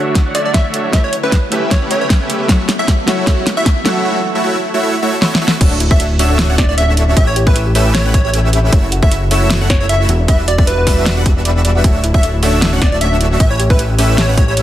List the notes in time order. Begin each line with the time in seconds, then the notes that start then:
Already playing: D3 F#3 A3 D4 E4 F#4 C#5 E5 F#5
0.15 kick, snare, closed hi-hat
0.26 A3 D4 F#4 C#5 F#5
0.35 A3 D4 F#4 C#5 D5 E5, closed hi-hat
0.45 D5
0.54 E5, kick, snare, closed hi-hat
0.74 closed hi-hat
0.91 C#3 A3 B3 E4 G4 B4 E5, kick, snare, closed hi-hat
0.95 C#5
1.04 C#5
1.13 closed hi-hat
1.23 A3 C#4 G4 B4 E5
1.32 kick, snare, closed hi-hat
1.50 A3 C#4 E4 G4 B4 E5, closed hi-hat
1.54 E5
1.71 C#5, kick, snare, closed hi-hat
1.82 A3 C#4 G4 B4 F#5
1.91 A3 C#4 G4 B4 C#5 E5, closed hi-hat
2.01 C#5
2.10 kick, snare, closed hi-hat
2.30 closed hi-hat
2.47 E3 F#3 F#4 A4 C#5 E5, kick, snare, closed hi-hat
2.69 snare, closed hi-hat
2.79 A3 E4 F#4 C#5 E5
2.88 kick, snare, closed hi-hat
3.06 F#3 A3 E4 F#4 A4 C#5 E5, snare, closed hi-hat
3.10 F#5
3.25 F#3 A3 E4 F#4 A4 C#5 E5, kick, snare, closed hi-hat
3.47 snare, closed hi-hat
3.57 A3 E4 F#4 C#5 E5
3.66 kick, snare, closed hi-hat
3.84 F#3 A3 E4 F#4 A4 C#5 E5, snare, closed hi-hat
3.88 F#5
4.05 A3 E4 F#4 C#5 E5
4.35 A3 E4 F#4 C#5 E5
4.44 A3 E4 F#4 C#5 E5
4.74 A3 E4 F#4 C#5 E5
4.83 A3 E4 F#4 C#5 E5
5.02 A3 E4 F#4 C#5 E5
5.22 A3 E4 F#4 C#5 E5, snare
5.35 snare
5.41 A3 E4 F#4 C#5 E5
5.48 snare
5.61 D1 A3 C#4 D4 F#4 C#5 E5, kick, closed hi-hat, crash
5.71 D4
5.80 E4, closed hi-hat
5.91 A3 C#4 D4 F#4 C#5 E5, kick
6.00 D4, closed hi-hat
6.10 E4
6.19 A3 C#4 D4 F#4 C#5 E5, open hi-hat
6.30 D4
6.39 E4, snare, closed hi-hat
6.49 A3 C#4 D4 F#4 C#5 F#5
6.58 D4 D5 E5, kick, snare, closed hi-hat
6.69 E4 D5
6.78 C#4 E5, closed hi-hat
6.88 D4
6.97 E4, closed hi-hat
7.08 C#4
7.17 A1 C#4 B4 E5, kick, closed hi-hat
7.27 E4 C#5
7.36 G4, closed hi-hat
7.47 A3 C#4 G4 B4 E5, kick
7.56 E4, closed hi-hat
7.66 G4
7.75 A3 C#4 G4 B4 E5, open hi-hat
7.86 E4
7.95 G4 C#5, snare, closed hi-hat
8.05 A3 C#4 G4 B4 F#5
8.14 E4 G4 C#5 E5, kick, closed hi-hat
8.25 G4 C#5
8.34 C#4, closed hi-hat
8.44 E4
8.53 G4, closed hi-hat
8.64 C#4
8.72 F#1 A3 C#4 E4 F#4 C#5 E5, kick, closed hi-hat
8.83 E4
8.92 F#4, closed hi-hat
9.03 A3 C#4 E4 F#4 C#5 E5, kick
9.11 E4, closed hi-hat
9.22 F#4
9.31 A3 C#4 E4 F#4 C#5 E5, open hi-hat
9.42 E4
9.50 F#4, snare, closed hi-hat
9.61 A3 C#4 E4 F#4 C#5 F#5
9.70 E4 F#4 C#5 E5, kick, snare, closed hi-hat
9.81 F#4 C#5
9.89 C#4 E5, closed hi-hat
10.00 E4
10.09 E1 F#4, closed hi-hat
10.19 D4
10.28 G3 D4 F#4 B4 E5, kick, closed hi-hat
10.39 E4
10.48 F#4 D5, closed hi-hat
10.58 G3 D4 F#4 B4 D5 E5, kick
10.67 E4 B4, closed hi-hat
10.78 F#4
10.87 G3 D4 F#4 B4 E5, kick, open hi-hat
10.97 E4
11.06 F#4, snare, closed hi-hat
11.17 G3 D4 F#4 B4 F#5
11.26 G3 D4 F#4 G4 B4 E5, kick, closed hi-hat
11.36 D4
11.45 D5, closed hi-hat
11.56 D4
11.65 D5, closed hi-hat
11.75 F#4
11.84 D1 A3 C#4 D4 F#4 C#5 E5, kick, closed hi-hat
11.95 D4
12.04 E4, closed hi-hat
12.14 A3 C#4 D4 F#4 C#5 E5, kick
12.23 D4, closed hi-hat
12.34 E4
12.43 A3 C#4 D4 F#4 C#5 E5, open hi-hat
12.53 D4
12.62 E4, snare, closed hi-hat
12.73 A3 C#4 D4 F#4 C#5 F#5
12.82 A3 D4 F#4 C#5 D5 E5, kick, snare, closed hi-hat
12.92 E4 D5
13.01 C#4 E5, closed hi-hat
13.12 D4
13.21 E4, closed hi-hat
13.31 C#4
13.40 A1 C#4 E5, kick, closed hi-hat
13.51 E4 C#5
13.60 G4, closed hi-hat
13.70 A3 C#4 G4 B4 E5, kick
13.79 E4, closed hi-hat
13.90 G4
13.99 A3 C#4 G4 B4 E5, open hi-hat
14.09 E4
14.18 G4 C#5, snare, closed hi-hat
14.29 A3 C#4 G4 B4 F#5
14.37 A3 C#4 E4 G4 B4 C#5 E5, kick, closed hi-hat
14.48 G4 C#5
14.57 C#4, closed hi-hat